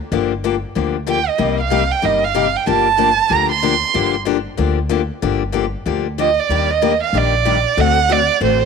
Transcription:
0.12 upright bass G1, steel-string acoustic guitar D3 F3 A#3 D4 G4
0.44 steel-string acoustic guitar D3 F3 A#3 D4 G4
0.75 upright bass D2, steel-string acoustic guitar D3 F3 A#3 D4 G4
1.07 steel-string acoustic guitar D3 F3 A#3 D4 G4, violin G5
1.28 violin D#5
1.38 upright bass C2, steel-string acoustic guitar C3 G3 A#3 D#4 G4
1.61 violin F5
1.70 steel-string acoustic guitar C3 G3 A#3 D#4 G4
1.92 violin G5
2.02 upright bass G1, steel-string acoustic guitar C3 G3 A#3 D#4 G4, violin D#5
2.24 violin F5
2.34 steel-string acoustic guitar C3 G3 A#3 D#4 G4
2.56 violin G5
2.66 upright bass G1, steel-string acoustic guitar D3 F3 A#3 D4 G4, violin A5
2.97 steel-string acoustic guitar D3 F3 A#3 D4 G4
3.29 upright bass D2, steel-string acoustic guitar D3 F3 A#3 D4 G4, violin A#5
3.51 violin C6
3.63 steel-string acoustic guitar D3 F3 A#3 D4 G4
3.94 upright bass G1, steel-string acoustic guitar D3 F3 A#3 D4 G4
4.25 steel-string acoustic guitar D3 F3 A#3 D4 G4
4.57 upright bass D2, steel-string acoustic guitar D3 F3 A#3 D4 G4
4.89 steel-string acoustic guitar D3 F3 A#3 D4 G4
5.22 upright bass G1, steel-string acoustic guitar D3 F3 A#3 D4 G4
5.52 steel-string acoustic guitar D3 F3 A#3 D4 G4
5.86 upright bass D2, steel-string acoustic guitar D3 F3 A#3 D4 G4
6.18 steel-string acoustic guitar D3 F3 A#3 D4 G4, violin D#5
6.40 violin D5
6.49 upright bass D#2, steel-string acoustic guitar D#3 G3 A#3 D4 G4
6.70 violin D#5
6.82 steel-string acoustic guitar D#3 G3 A#3 D4 G4
7.03 violin F5
7.13 upright bass A#1, steel-string acoustic guitar D#3 G3 A#3 D4 G4
7.17 violin D5
7.45 steel-string acoustic guitar D#3 G3 A#3 D4 G4
7.77 upright bass D2, steel-string acoustic guitar D3 A3 C4 F#4 A4, violin F#5
8.09 steel-string acoustic guitar D3 A3 C4 F#4 A4, violin D5
8.40 upright bass A1, steel-string acoustic guitar D3 A3 C4 F#4 A4, violin C5

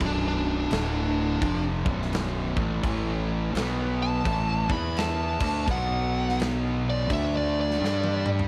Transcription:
0.00 fingered electric bass B0, distorted electric guitar B1 F#2 B2, kick, crash
0.05 lead electric guitar D4
0.28 lead electric guitar D4
0.71 fingered electric bass D1, distorted electric guitar D2 A2 D3, snare, crash
1.42 fingered electric bass F1, distorted electric guitar F2 C3 F3, kick, crash
1.84 fingered electric bass B0, distorted electric guitar B1 F#2 B2, kick
2.02 snare
2.13 snare, crash
2.55 fingered electric bass A1, distorted electric guitar A2 E3 A3, kick
2.81 fingered electric bass A1, distorted electric guitar A2 E3 A3, kick, crash
3.53 fingered electric bass B1, distorted electric guitar B2 F#3 B3, crash
3.57 snare
4.03 lead electric guitar A5
4.23 fingered electric bass A1, distorted electric guitar A2 E3 A3, kick, crash
4.68 fingered electric bass E2, distorted electric guitar E3 B3 E4, lead electric guitar B5, kick
4.97 lead electric guitar A5, snare, crash
5.39 fingered electric bass D2, distorted electric guitar D3 A3 D4, kick, crash
5.67 fingered electric bass B1, distorted electric guitar B2 F#3 B3, kick, crash
5.71 lead electric guitar F#5
6.29 snare
6.40 snare, crash
6.90 lead electric guitar D5
7.09 fingered electric bass D2, distorted electric guitar D3 A3 D4, kick, crash
7.13 lead electric guitar E5
7.37 lead electric guitar D5
7.61 lead electric guitar D5
7.71 snare
7.80 fingered electric bass G2, distorted electric guitar G3 D4 G4
7.84 snare
8.04 high tom
8.26 mid tom
8.39 floor tom

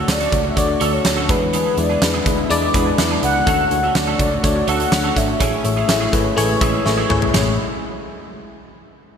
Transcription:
Already playing: fm electric piano D3 A3 D4 F#4 C#5, analog synth pad D3 A3 D4 F#4
0.08 picked electric bass D2, fm electric piano A3 D4 F#4 C#5, soft synth lead D5, muted clean electric guitar stroke, snare, closed hi-hat
0.20 clean electric guitar A3 C#4 F#4 A4, closed hi-hat
0.32 picked electric bass C#2, fm electric piano A3 D4 F#4 C#5, muted clean electric guitar stroke, kick, closed hi-hat
0.44 muted clean electric guitar stroke
0.50 soft synth lead E5
0.56 picked electric bass D2, fm electric piano A3 D4 F#4 C#5, soft synth lead D5, muted clean electric guitar stroke, kick, closed hi-hat
0.68 muted clean electric guitar stroke
0.80 picked electric bass D2, clean electric guitar A3 C#4 F#4 A4, fm electric piano A3 D4 F#4 C#5, closed hi-hat
0.92 clean electric guitar A3 C#4 F#4 A4, soft synth lead C#5
1.04 picked electric bass D2, fm electric piano A3 D4 F#4 C#5, muted clean electric guitar stroke, snare, closed hi-hat
1.17 clean electric guitar A3 C#4 F#4 A4
1.29 picked electric bass E2, clean electric guitar E3 B3 D4 G#4, fm electric piano E3 G#3 D4 E4 B4, analog synth pad G#3 B3 E4, soft synth lead B4, kick, closed hi-hat
1.41 muted clean electric guitar stroke
1.53 clean electric guitar E3 B3 D4 G#4, soft synth lead B4, closed hi-hat
1.77 picked electric bass E2, fm electric piano G#3 D4 E4 B4, soft synth lead D5, muted clean electric guitar stroke, closed hi-hat
1.89 clean electric guitar E3 B3 D4 G#4
2.01 picked electric bass E2, fm electric piano G#3 D4 E4 B4, muted clean electric guitar stroke, snare, closed hi-hat
2.14 clean electric guitar E3 B3 D4 G#4
2.26 picked electric bass D2, fm electric piano G#3 D4 E4 B4, muted clean electric guitar stroke, kick, closed hi-hat
2.38 muted clean electric guitar stroke
2.50 picked electric bass E2, fm electric piano G#3 D4 E4 D5, muted clean electric guitar stroke, closed hi-hat
2.62 muted clean electric guitar stroke
2.74 picked electric bass E2, clean electric guitar E3 B3 D4 G#4, fm electric piano G#3 D4 E4 B4, kick, closed hi-hat
2.86 clean electric guitar E3 B3 D4 G#4
2.98 picked electric bass E2, fm electric piano G#3 D4 E4 B4, muted clean electric guitar stroke, snare, closed hi-hat
3.11 clean electric guitar E3 B3 D4 G#4
3.22 picked electric bass C#2, fm electric piano G#3 D4 E4 B4, soft synth lead F#5, muted clean electric guitar stroke, closed hi-hat
3.35 muted clean electric guitar stroke
3.46 picked electric bass D2, fm electric piano D3 A3 D4 F#4 C#5, clean electric guitar A3 C#4 F#4 A4, analog synth pad A3 D4 F#4, kick, closed hi-hat
3.70 picked electric bass D2, fm electric piano A3 D4 F#4 C#5, muted clean electric guitar stroke, closed hi-hat
3.83 clean electric guitar A3 C#4 F#4 A4
3.95 picked electric bass D2, fm electric piano A3 D4 F#4 C#5, soft synth lead D5, muted clean electric guitar stroke, snare, closed hi-hat
4.07 clean electric guitar A3 C#4 F#4 A4
4.19 picked electric bass C#2, fm electric piano A3 D4 F#4 C#5, muted clean electric guitar stroke, kick, closed hi-hat
4.31 muted clean electric guitar stroke
4.43 picked electric bass D2, fm electric piano A3 D4 F#4 C#5, soft synth lead D5, muted clean electric guitar stroke, kick, closed hi-hat
4.56 muted clean electric guitar stroke
4.67 picked electric bass D2, fm electric piano A3 D4 F#4 C#5, clean electric guitar A3 C#4 F#4 A4, soft synth lead F#5, closed hi-hat
4.80 clean electric guitar A3 C#4 F#4 A4, closed hi-hat
4.92 picked electric bass D2, fm electric piano A3 D4 F#4 C#5, muted clean electric guitar stroke, snare, closed hi-hat
5.04 clean electric guitar A3 C#4 F#4 A4
5.16 picked electric bass G#1, fm electric piano A3 D4 F#4 C#5, soft synth lead E5, muted clean electric guitar stroke, kick, closed hi-hat
5.28 muted clean electric guitar stroke
5.40 picked electric bass A1, fm electric piano A2 A3 E4 G#4 C#5, analog synth pad C#3 G#3 E4, clean electric guitar E3 A3 C#4 G#4, kick, closed hi-hat
5.64 picked electric bass A1, fm electric piano A3 E4 G#4 C#5, muted clean electric guitar stroke, closed hi-hat
5.76 clean electric guitar E3 A3 C#4 G#4
5.88 picked electric bass A1, fm electric piano A3 E4 G#4 C#5, muted clean electric guitar stroke, snare, closed hi-hat, tambourine
6.01 clean electric guitar E3 A3 C#4 G#4
6.12 picked electric bass G#1, fm electric piano A3 E4 G#4 B4, muted clean electric guitar stroke, kick, closed hi-hat
6.25 muted clean electric guitar stroke
6.36 picked electric bass A1, fm electric piano A3 E4 G#4 C#5, muted clean electric guitar stroke, closed hi-hat
6.49 muted clean electric guitar stroke
6.61 picked electric bass A1, clean electric guitar E3 A3 C#4 G#4, fm electric piano A3 E4 G#4 E5, kick, closed hi-hat
6.73 clean electric guitar E3 A3 C#4 G#4
6.85 picked electric bass A1, fm electric piano A3 E4 G#4 C#5, muted clean electric guitar stroke, snare
6.97 clean electric guitar E3 A3 C#4 G#4
7.09 picked electric bass G#1, fm electric piano A3 E4 G#4 C#5, muted clean electric guitar stroke, mid tom
7.22 muted clean electric guitar stroke, floor tom
7.34 picked electric bass A1, fm electric piano A1 A3 E4 G#4 C#5, clean electric guitar G#3 C#4 E4 G#4, soft synth lead C#5, snare, floor tom, splash

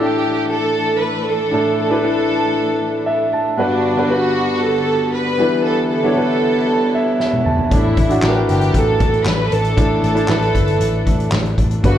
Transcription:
Already playing: grand piano A2 D4 E4, string section E3 A3 D4
0.00 violin section G4, grand piano A4
0.51 violin section A4
1.02 violin section B4
1.28 violin section A4
1.51 grand piano A2 D4 E4 A4
1.80 violin section A4
1.90 grand piano D4 E4 B4
2.02 grand piano D4 E4 A4
3.06 grand piano E5
3.33 grand piano A5
3.57 grand piano G2 G3 B3 D4 F#4 B4, string section D3 G3 B3 F#4, violin section D4
3.97 grand piano G3 B3 D4 F#4 B4
4.09 grand piano G3 B3 D4 F#4 B4, violin section F#4
4.61 violin section A4
5.13 violin section B4
5.38 string section D3 E3 E4, grand piano E3 G3 B3 D4 E4 B4
5.65 violin section A4
5.91 violin section A4
6.03 grand piano G3 B3 D4 E4 C#5
6.16 grand piano G3 B3 D4 E4 B4
6.95 grand piano E5
7.20 grand piano E5, snare
7.33 high tom
7.45 grand piano A5, mid tom
7.59 floor tom
7.71 picked electric bass A1, grand piano A2 D4 E4 A4, string section A3 D4, violin section E4, kick, closed hi-hat
7.97 picked electric bass A1, kick, closed hi-hat
8.09 grand piano D4 E4 F#4, closed hi-hat
8.22 picked electric bass A1, grand piano D4 E4 A#4, violin section G4, snare, clap
8.30 grand piano B4
8.49 picked electric bass G1, violin section G4, closed hi-hat
8.61 closed hi-hat
8.74 picked electric bass A1, violin section A4, kick, closed hi-hat
9.00 picked electric bass A1, kick, closed hi-hat
9.13 closed hi-hat
9.25 picked electric bass A1, violin section B4, snare, clap
9.52 picked electric bass A1, violin section A4, closed hi-hat
9.64 closed hi-hat
9.76 picked electric bass A1, grand piano A2 D4 E4 A4, kick, closed hi-hat
10.03 picked electric bass A1, violin section A4, closed hi-hat
10.15 grand piano D4 E4 A4, closed hi-hat
10.28 picked electric bass A1, grand piano D4 E4 B4, snare, clap
10.42 snare, closed hi-hat
10.55 picked electric bass G1, kick, closed hi-hat
10.67 closed hi-hat
10.80 picked electric bass A1, closed hi-hat
11.07 picked electric bass A1, kick, closed hi-hat
11.20 closed hi-hat
11.32 picked electric bass A1, snare, clap
11.45 closed hi-hat
11.58 picked electric bass A1, kick, closed hi-hat
11.71 closed hi-hat
11.83 picked electric bass G1, grand piano G2 G3 B3 D4 F#4 B4, string section D3 G3 B3 F#4, violin section F#4, kick, closed hi-hat

